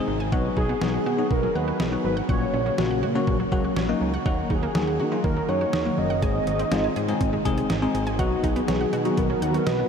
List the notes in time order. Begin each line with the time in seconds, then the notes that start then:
Already playing: C3 D#3 G#3 C4 D#4 G#4
0.08 G#1 G#3
0.20 G#5
0.32 B1 F#3 B3 D#4 F#4 F#5, kick
0.57 B1 D#4 G#4, kick
0.69 B3
0.81 B1 F#3 B3 D#4 F#4, snare
0.94 F#5
1.06 B2 F#4
1.18 F#3 B3 D#4 F#4
1.31 B1 B3 A#4, kick
1.43 F#3
1.55 D#2 F#3 B3 D#4 F#4 B4 F#5
1.68 F#4
1.80 B1 D#4, snare
1.92 F#3 B3 D#4 F#4
2.04 G#1 F#3 B4
2.17 F#5
2.29 A#1 C#3 F#3 A#3 C#4 F#4 C#5 F#5, kick
2.54 A#1 C#4
2.66 A#3
2.78 A#1 F#3 A#3 C#4 F#4, snare
2.91 F#5
3.03 A#2 F#4
3.15 F#3 A#3 C#4 F#4
3.27 A#1 A#3, kick
3.40 F#3
3.52 C#2 F#3 A#3 C#4 F#4 F#5, kick
3.64 F#4
3.77 A#1 C#4, snare
3.89 F#3 A#3 C#4 D#4
4.01 C#2 F#3
4.14 F#5
4.26 D#2 D#3 F#3 A#3 D#4 F#4 F#5, kick
4.50 D#2 D#4 G#4, kick
4.63 A#3
4.75 D#2 F#3 A#3 D#4 G#4, snare
4.87 F#5
5.00 D#3 F#4
5.12 F#3 A#3 D#4 F4
5.24 D#2 A#3 A#4, kick
5.36 F#3
5.49 F#2 F#3 A#3 D#4 F#4 C#5 F#5
5.61 F#4
5.73 D#2 D#4, snare
5.86 F#3 A#3 D#4 F#4
5.98 F#1 F#3 D#5
6.10 F#5
6.22 G#1 C3 G#3 C4 D#4 G#4 G#5, kick, closed hi-hat
6.47 G#1 D#4, closed hi-hat
6.59 C4, closed hi-hat
6.72 G#1 G#3 C4 D#4 F4, snare, closed hi-hat
6.84 G#5
6.96 G#2 G#4, closed hi-hat
7.08 G#3 C4 D#4 G#4, closed hi-hat
7.21 G#1 C4, kick, closed hi-hat
7.33 G#3
7.45 C2 G#3 C4 D#4 G#4 G#5, kick, closed hi-hat
7.58 G#4, closed hi-hat
7.70 G#1 D#4, snare, closed hi-hat
7.82 G#3 C4 D#4 G#4
7.94 G#1 G#3, closed hi-hat
8.07 G#5, closed hi-hat
8.19 B1 D#3 F#3 B3 D#4 F#4 F#5, kick, closed hi-hat
8.43 B1 D#4 G#4, kick, closed hi-hat
8.56 B3, closed hi-hat
8.68 B1 F#3 B3 D#4 F#4, snare, closed hi-hat
8.81 F#5
8.93 B2 F#4, closed hi-hat
9.05 F#3 B3 D#4 F#4, closed hi-hat
9.17 B1 B3 A#4, kick, closed hi-hat
9.30 F#3
9.42 D#2 F#3 B3 D#4 F#4 F#5, closed hi-hat
9.54 F#4, closed hi-hat
9.67 B1 D#4 B4, snare, closed hi-hat
9.79 F#3 B3 D#4 F#4